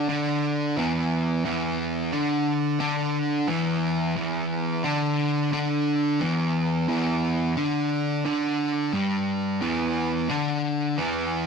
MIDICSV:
0, 0, Header, 1, 2, 480
1, 0, Start_track
1, 0, Key_signature, 1, "minor"
1, 0, Tempo, 680272
1, 1022, Time_signature, 4, 2, 24, 8
1, 8090, End_track
2, 0, Start_track
2, 0, Title_t, "Distorted electric guitar"
2, 0, Program_c, 0, 30
2, 63, Note_on_c, 0, 50, 99
2, 69, Note_on_c, 0, 62, 104
2, 537, Note_off_c, 0, 50, 0
2, 540, Note_off_c, 0, 62, 0
2, 541, Note_on_c, 0, 40, 88
2, 543, Note_on_c, 0, 52, 93
2, 1013, Note_off_c, 0, 40, 0
2, 1017, Note_off_c, 0, 52, 0
2, 1022, Note_on_c, 0, 40, 95
2, 1025, Note_on_c, 0, 52, 112
2, 1496, Note_off_c, 0, 40, 0
2, 1497, Note_off_c, 0, 52, 0
2, 1497, Note_on_c, 0, 50, 87
2, 1501, Note_on_c, 0, 62, 92
2, 1965, Note_off_c, 0, 50, 0
2, 1968, Note_off_c, 0, 62, 0
2, 1973, Note_on_c, 0, 50, 102
2, 1977, Note_on_c, 0, 62, 111
2, 2450, Note_off_c, 0, 50, 0
2, 2451, Note_on_c, 0, 40, 81
2, 2452, Note_off_c, 0, 62, 0
2, 2452, Note_on_c, 0, 52, 91
2, 2927, Note_off_c, 0, 40, 0
2, 2930, Note_off_c, 0, 52, 0
2, 2935, Note_on_c, 0, 40, 108
2, 2939, Note_on_c, 0, 52, 118
2, 3411, Note_off_c, 0, 40, 0
2, 3412, Note_on_c, 0, 50, 83
2, 3413, Note_off_c, 0, 52, 0
2, 3416, Note_on_c, 0, 62, 105
2, 3884, Note_off_c, 0, 50, 0
2, 3891, Note_off_c, 0, 62, 0
2, 3893, Note_on_c, 0, 50, 108
2, 3902, Note_on_c, 0, 62, 127
2, 4370, Note_off_c, 0, 50, 0
2, 4373, Note_on_c, 0, 40, 83
2, 4374, Note_off_c, 0, 62, 0
2, 4378, Note_on_c, 0, 52, 84
2, 4847, Note_off_c, 0, 40, 0
2, 4848, Note_off_c, 0, 52, 0
2, 4855, Note_on_c, 0, 40, 108
2, 4856, Note_on_c, 0, 52, 104
2, 5331, Note_off_c, 0, 40, 0
2, 5332, Note_off_c, 0, 52, 0
2, 5336, Note_on_c, 0, 50, 98
2, 5342, Note_on_c, 0, 62, 107
2, 5812, Note_off_c, 0, 50, 0
2, 5815, Note_off_c, 0, 62, 0
2, 5822, Note_on_c, 0, 50, 93
2, 5829, Note_on_c, 0, 62, 102
2, 6296, Note_off_c, 0, 50, 0
2, 6299, Note_off_c, 0, 62, 0
2, 6299, Note_on_c, 0, 43, 78
2, 6306, Note_on_c, 0, 55, 103
2, 6775, Note_off_c, 0, 43, 0
2, 6778, Note_off_c, 0, 55, 0
2, 6782, Note_on_c, 0, 40, 98
2, 6788, Note_on_c, 0, 52, 97
2, 7256, Note_on_c, 0, 50, 92
2, 7257, Note_off_c, 0, 40, 0
2, 7260, Note_off_c, 0, 52, 0
2, 7262, Note_on_c, 0, 62, 91
2, 7735, Note_off_c, 0, 50, 0
2, 7738, Note_off_c, 0, 62, 0
2, 7740, Note_on_c, 0, 40, 91
2, 7747, Note_on_c, 0, 52, 112
2, 8090, Note_off_c, 0, 40, 0
2, 8090, Note_off_c, 0, 52, 0
2, 8090, End_track
0, 0, End_of_file